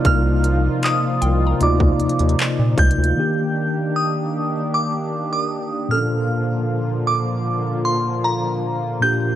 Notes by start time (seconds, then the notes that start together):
Already playing: C3 F3 A#3 D#4 F4 D5
0.05 C2 F6, kick, closed hi-hat
0.44 closed hi-hat
0.83 D#6, clap, closed hi-hat
1.22 C2 D#4 G5, closed hi-hat
1.47 A#5
1.60 D2 C3 A#3 D#4 F4 D5 D6, closed hi-hat
1.80 kick
2.00 D#2, closed hi-hat
2.10 closed hi-hat
2.19 D#2, closed hi-hat
2.29 closed hi-hat
2.39 clap, closed hi-hat
2.59 A#2
2.78 C#2 G6, kick, closed hi-hat, open hi-hat
2.91 closed hi-hat
2.98 D2
3.04 closed hi-hat
3.16 D#3 A#3 D4 G4
3.96 D#6
4.74 D6
5.32 D6
5.43 D#6
5.88 A#2 D3 F3 A#3 C#4 F4 A4 F6
5.97 D4
7.07 D6
7.85 C6
8.24 A#5
9.00 A#2 A#3 D4 G4 G6